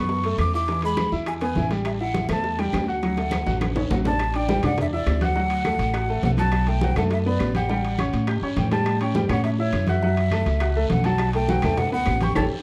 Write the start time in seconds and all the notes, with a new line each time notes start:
Already playing: F#2 B3 B4 C#6
0.09 high bongo, high conga, long guiro
0.24 A3 A4, high conga, high timbale
0.38 E2 D6, high bongo, low bongo, high conga, high timbale, short guiro, claves
0.54 E4 E5 D6, high bongo, short guiro
0.68 E3 E4, high bongo, high conga, high timbale, long guiro
0.82 G#3 G#4 B5, high bongo, high conga, high timbale
0.97 high bongo, high conga, high timbale, short guiro, claves
1.12 E2 E4 E5, high bongo, high conga, short guiro
1.26 G#5, high bongo, high conga, high timbale, long guiro, claves
1.41 B3 B4 G#5, high conga, high timbale
1.55 A1 E3 E4, high bongo, low bongo, high conga, short guiro
1.71 G3 G4, high bongo, high conga, high timbale, short guiro
1.85 E5, high bongo, high conga, high timbale, long guiro, claves
1.99 E4 E5 F#5, high bongo, high conga
2.14 high bongo, high conga, high timbale, short guiro
2.29 E2 A3 A4 A5, high bongo, high conga, high timbale, short guiro, claves
2.43 high bongo, high conga, long guiro
2.59 G3 G4 G5, high conga, high timbale
2.73 D2, high bongo, low bongo, high conga, high timbale, low timbale, short guiro, claves
2.88 F#4 F#5, high bongo, short guiro
3.02 F#3 F#4, high bongo, high conga, high timbale, long guiro
3.17 A3 A4, high bongo, high conga, high timbale
3.31 high bongo, high conga, high timbale, short guiro, claves
3.46 A1 F#4 F#5, high bongo, high conga, short guiro
3.61 low bongo, high conga, high timbale, long guiro, claves
3.76 C#4 C#5, low bongo, low conga, high timbale
3.90 A1 F#3 F#4 F#5, low bongo, low conga, low timbale, short guiro
4.05 D4 D5 A5, low bongo, low conga, low timbale, short guiro
4.19 high bongo, high conga, high timbale, long guiro, claves
4.34 D4 D5 G5 D6, high conga, high timbale
4.49 G3 G4 G5, high bongo, high conga, short guiro
4.63 E2 D4 D5 F#5 D6, high bongo, high conga, low conga, high timbale, short guiro, claves
4.78 E5, high bongo, high conga, low conga, high timbale, long guiro
4.92 E4 D5 E5 E6, high bongo, high conga
5.07 D2, high bongo, low bongo, high conga, high timbale, low timbale, short guiro, claves
5.21 F#4 F#5 F#6, high bongo, high conga, high timbale, short guiro
5.36 F#3 F#4 F#5, high bongo, high conga, long guiro
5.50 high conga, high timbale
5.65 A3 A4 A5, high bongo, high conga, high timbale, short guiro, claves
5.79 A1, high bongo, high timbale, short guiro
5.94 F#4 F#5 F#6, high bongo, high conga, high timbale, long guiro, claves
6.08 A3 A4 A5, high bongo, high conga
6.23 B1 F#5, high bongo, low bongo, high conga, high timbale, low timbale, short guiro
6.37 F#3 F#4 F#5 A5, high bongo, high conga, high timbale, short guiro
6.52 high bongo, high conga, high timbale, long guiro, claves
6.67 A3 A4 G5 A5, high conga, high timbale
6.81 F#3 F#4 F#5, high bongo, high conga, short guiro
6.96 F#2 A3 A4 F#5 A5, high bongo, high conga, low conga, high timbale, short guiro, claves
7.11 E5, high bongo, high conga, high timbale, long guiro
7.25 B3 B4 D5 B5, high bongo, high conga
7.39 A1, high bongo, low bongo, high conga, high timbale, low timbale, short guiro, claves
7.55 G4 F#5 G5 G6, high bongo, high conga, high timbale, short guiro
7.69 G3 G4 G5, high bongo, high conga, long guiro
7.84 high conga, high timbale
7.98 C#4 C#5 C#6, high bongo, high conga, high timbale, short guiro, claves
8.13 A2, high bongo, high timbale, short guiro
8.27 G4 G5 G6, high bongo, high conga, high timbale, long guiro, claves
8.42 G2 C#4 C#5 C#6, high bongo, high conga
8.56 A2 G5, high bongo, low bongo, high conga, high timbale, short guiro
8.71 G3 G4 G5 A5, high bongo, high conga, high timbale, short guiro
8.85 high bongo, high conga, high timbale, long guiro, claves
9.00 C#4 C#5 G5 C#6, high conga, high timbale
9.15 G3 G4 G5, high bongo, high conga, short guiro
9.29 A2 C#4 C#5 F#5 C#6, high bongo, high conga, low conga, high timbale, short guiro, claves
9.44 E5, high bongo, high conga, high timbale, long guiro
9.58 E4 C#5 E5 E6, high bongo, high conga
9.73 F#2, high bongo, low bongo, high conga, high timbale, short guiro, claves
9.87 F#4 E5 F#5 F#6, high bongo, high conga, high timbale, short guiro
10.02 F#3 F#4 F#5, high bongo, high conga, long guiro
10.17 high conga, high timbale
10.31 A3 A4 A5, high bongo, high conga, high timbale, short guiro, claves
10.46 C#2, high bongo, high timbale, short guiro
10.60 F#4 F#5 F#6, high bongo, high conga, high timbale, long guiro, claves
10.75 A3 A4 A5, high bongo, high conga
10.90 B1 F#5, high bongo, low bongo, high conga, high timbale, short guiro
11.04 F#3 F#4 F#5 A5, high bongo, high conga, high timbale, short guiro
11.18 high bongo, high conga, high timbale, long guiro, claves
11.33 A3 A4 G5 A5, high conga, high timbale
11.48 F#3 F#4 F#5, high bongo, high conga, short guiro
11.62 D2 A3 A4 A5, high bongo, high conga, low conga, high timbale, short guiro, claves
11.78 F#5, high bongo, high conga, low conga, high timbale, long guiro
11.92 B3 B4 F#5 B5, high bongo, high conga
12.06 A1, high bongo, low bongo, high conga, high timbale, low timbale, short guiro, claves
12.21 G4 G5 C#6 G6, high bongo, high conga, high timbale, short guiro
12.35 A1 G4 A4 C#5 A5, high bongo, high conga, high timbale, long guiro, claves